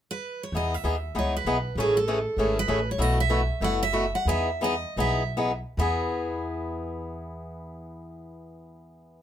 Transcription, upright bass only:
0, 0, Header, 1, 2, 480
1, 0, Start_track
1, 0, Key_signature, 4, "major"
1, 0, Tempo, 307062
1, 835, Time_signature, 4, 2, 24, 8
1, 5154, Tempo, 328587
1, 7074, Tempo, 378072
1, 8034, Tempo, 418994
1, 8514, Tempo, 436999
1, 12287, End_track
2, 0, Start_track
2, 0, Title_t, "Upright bass"
2, 0, Program_c, 0, 32
2, 816, Note_on_c, 0, 40, 77
2, 1208, Note_off_c, 0, 40, 0
2, 1305, Note_on_c, 0, 39, 68
2, 1717, Note_off_c, 0, 39, 0
2, 1790, Note_on_c, 0, 37, 72
2, 2201, Note_off_c, 0, 37, 0
2, 2261, Note_on_c, 0, 35, 70
2, 2675, Note_off_c, 0, 35, 0
2, 2742, Note_on_c, 0, 33, 75
2, 3515, Note_off_c, 0, 33, 0
2, 3699, Note_on_c, 0, 32, 72
2, 4113, Note_off_c, 0, 32, 0
2, 4187, Note_on_c, 0, 33, 67
2, 4597, Note_off_c, 0, 33, 0
2, 4659, Note_on_c, 0, 35, 70
2, 5422, Note_off_c, 0, 35, 0
2, 5603, Note_on_c, 0, 30, 67
2, 6370, Note_off_c, 0, 30, 0
2, 6551, Note_on_c, 0, 40, 83
2, 7349, Note_off_c, 0, 40, 0
2, 7521, Note_on_c, 0, 35, 76
2, 8319, Note_off_c, 0, 35, 0
2, 8498, Note_on_c, 0, 40, 85
2, 12287, Note_off_c, 0, 40, 0
2, 12287, End_track
0, 0, End_of_file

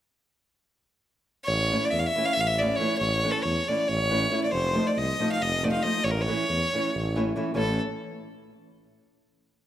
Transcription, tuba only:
0, 0, Header, 1, 2, 480
1, 0, Start_track
1, 0, Tempo, 433526
1, 1634, Time_signature, 7, 3, 24, 8
1, 10702, End_track
2, 0, Start_track
2, 0, Title_t, "Tuba"
2, 0, Program_c, 0, 58
2, 1633, Note_on_c, 0, 33, 92
2, 1933, Note_off_c, 0, 33, 0
2, 2127, Note_on_c, 0, 40, 82
2, 2296, Note_off_c, 0, 40, 0
2, 2629, Note_on_c, 0, 33, 75
2, 3039, Note_off_c, 0, 33, 0
2, 3323, Note_on_c, 0, 33, 90
2, 3621, Note_off_c, 0, 33, 0
2, 3815, Note_on_c, 0, 40, 84
2, 3982, Note_off_c, 0, 40, 0
2, 4310, Note_on_c, 0, 33, 79
2, 4722, Note_off_c, 0, 33, 0
2, 5001, Note_on_c, 0, 29, 84
2, 5301, Note_off_c, 0, 29, 0
2, 5506, Note_on_c, 0, 36, 75
2, 5671, Note_off_c, 0, 36, 0
2, 5991, Note_on_c, 0, 29, 72
2, 6404, Note_off_c, 0, 29, 0
2, 6684, Note_on_c, 0, 33, 91
2, 6985, Note_off_c, 0, 33, 0
2, 7187, Note_on_c, 0, 40, 77
2, 7353, Note_off_c, 0, 40, 0
2, 7692, Note_on_c, 0, 33, 78
2, 8099, Note_off_c, 0, 33, 0
2, 8364, Note_on_c, 0, 33, 87
2, 8622, Note_off_c, 0, 33, 0
2, 10702, End_track
0, 0, End_of_file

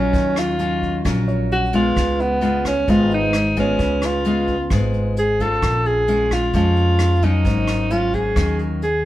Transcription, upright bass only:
0, 0, Header, 1, 2, 480
1, 0, Start_track
1, 0, Tempo, 457666
1, 133, Time_signature, 4, 2, 24, 8
1, 9492, End_track
2, 0, Start_track
2, 0, Title_t, "Upright bass"
2, 0, Program_c, 0, 32
2, 140, Note_on_c, 0, 39, 83
2, 1054, Note_off_c, 0, 39, 0
2, 1102, Note_on_c, 0, 34, 86
2, 2015, Note_off_c, 0, 34, 0
2, 2062, Note_on_c, 0, 37, 88
2, 2975, Note_off_c, 0, 37, 0
2, 3021, Note_on_c, 0, 32, 96
2, 3934, Note_off_c, 0, 32, 0
2, 3975, Note_on_c, 0, 37, 85
2, 4891, Note_off_c, 0, 37, 0
2, 4936, Note_on_c, 0, 32, 91
2, 5851, Note_off_c, 0, 32, 0
2, 5900, Note_on_c, 0, 34, 85
2, 6814, Note_off_c, 0, 34, 0
2, 6857, Note_on_c, 0, 41, 94
2, 7772, Note_off_c, 0, 41, 0
2, 7810, Note_on_c, 0, 32, 83
2, 8729, Note_off_c, 0, 32, 0
2, 8770, Note_on_c, 0, 39, 91
2, 9492, Note_off_c, 0, 39, 0
2, 9492, End_track
0, 0, End_of_file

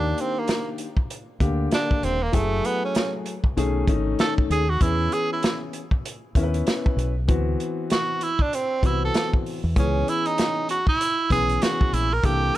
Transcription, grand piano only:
0, 0, Header, 1, 2, 480
1, 0, Start_track
1, 0, Tempo, 618557
1, 1816, Time_signature, 4, 2, 24, 8
1, 9761, End_track
2, 0, Start_track
2, 0, Title_t, "Grand piano"
2, 0, Program_c, 0, 0
2, 0, Note_on_c, 0, 51, 62
2, 0, Note_on_c, 0, 58, 69
2, 0, Note_on_c, 0, 62, 71
2, 0, Note_on_c, 0, 67, 82
2, 651, Note_off_c, 0, 51, 0
2, 651, Note_off_c, 0, 58, 0
2, 654, Note_off_c, 0, 62, 0
2, 679, Note_off_c, 0, 67, 0
2, 1090, Note_on_c, 0, 50, 89
2, 1090, Note_on_c, 0, 58, 86
2, 1095, Note_on_c, 0, 62, 83
2, 1095, Note_on_c, 0, 67, 94
2, 1671, Note_off_c, 0, 50, 0
2, 1671, Note_off_c, 0, 58, 0
2, 1674, Note_off_c, 0, 62, 0
2, 1674, Note_off_c, 0, 67, 0
2, 1804, Note_on_c, 0, 54, 68
2, 1809, Note_on_c, 0, 57, 64
2, 1809, Note_on_c, 0, 64, 60
2, 1813, Note_on_c, 0, 68, 82
2, 2566, Note_off_c, 0, 54, 0
2, 2568, Note_off_c, 0, 57, 0
2, 2568, Note_off_c, 0, 64, 0
2, 2570, Note_off_c, 0, 68, 0
2, 2768, Note_on_c, 0, 51, 91
2, 2774, Note_on_c, 0, 57, 78
2, 2774, Note_on_c, 0, 61, 90
2, 2775, Note_on_c, 0, 68, 98
2, 2973, Note_off_c, 0, 51, 0
2, 2976, Note_off_c, 0, 57, 0
2, 2976, Note_off_c, 0, 61, 0
2, 2976, Note_off_c, 0, 68, 0
2, 3004, Note_on_c, 0, 51, 85
2, 3008, Note_on_c, 0, 57, 81
2, 3008, Note_on_c, 0, 61, 88
2, 3014, Note_on_c, 0, 63, 97
2, 3588, Note_off_c, 0, 51, 0
2, 3590, Note_off_c, 0, 57, 0
2, 3590, Note_off_c, 0, 61, 0
2, 3593, Note_off_c, 0, 63, 0
2, 3728, Note_on_c, 0, 52, 65
2, 3731, Note_on_c, 0, 59, 70
2, 3732, Note_on_c, 0, 61, 70
2, 3734, Note_on_c, 0, 68, 74
2, 4488, Note_off_c, 0, 52, 0
2, 4490, Note_off_c, 0, 59, 0
2, 4490, Note_off_c, 0, 61, 0
2, 4491, Note_off_c, 0, 68, 0
2, 4932, Note_on_c, 0, 64, 85
2, 4933, Note_on_c, 0, 59, 84
2, 4938, Note_on_c, 0, 61, 76
2, 4940, Note_on_c, 0, 70, 75
2, 4992, Note_on_c, 0, 71, 97
2, 4998, Note_off_c, 0, 70, 0
2, 5512, Note_off_c, 0, 64, 0
2, 5513, Note_off_c, 0, 59, 0
2, 5515, Note_off_c, 0, 61, 0
2, 5542, Note_off_c, 0, 71, 0
2, 5648, Note_on_c, 0, 52, 93
2, 5652, Note_on_c, 0, 59, 82
2, 5655, Note_on_c, 0, 60, 73
2, 5659, Note_on_c, 0, 66, 93
2, 6408, Note_off_c, 0, 52, 0
2, 6410, Note_off_c, 0, 59, 0
2, 6411, Note_off_c, 0, 60, 0
2, 6413, Note_off_c, 0, 66, 0
2, 6847, Note_on_c, 0, 52, 75
2, 6854, Note_on_c, 0, 59, 72
2, 6856, Note_on_c, 0, 60, 73
2, 6859, Note_on_c, 0, 66, 83
2, 7430, Note_off_c, 0, 52, 0
2, 7433, Note_off_c, 0, 59, 0
2, 7434, Note_off_c, 0, 60, 0
2, 7436, Note_off_c, 0, 66, 0
2, 7575, Note_on_c, 0, 52, 77
2, 7576, Note_on_c, 0, 59, 67
2, 7581, Note_on_c, 0, 61, 67
2, 7583, Note_on_c, 0, 68, 85
2, 8332, Note_off_c, 0, 52, 0
2, 8332, Note_off_c, 0, 59, 0
2, 8334, Note_off_c, 0, 61, 0
2, 8335, Note_off_c, 0, 68, 0
2, 8774, Note_on_c, 0, 52, 79
2, 8778, Note_on_c, 0, 59, 72
2, 8779, Note_on_c, 0, 61, 65
2, 8781, Note_on_c, 0, 68, 86
2, 9353, Note_off_c, 0, 52, 0
2, 9355, Note_off_c, 0, 59, 0
2, 9356, Note_off_c, 0, 61, 0
2, 9357, Note_off_c, 0, 68, 0
2, 9494, Note_on_c, 0, 52, 67
2, 9494, Note_on_c, 0, 58, 67
2, 9498, Note_on_c, 0, 62, 66
2, 9500, Note_on_c, 0, 69, 73
2, 9761, Note_off_c, 0, 52, 0
2, 9761, Note_off_c, 0, 58, 0
2, 9761, Note_off_c, 0, 62, 0
2, 9761, Note_off_c, 0, 69, 0
2, 9761, End_track
0, 0, End_of_file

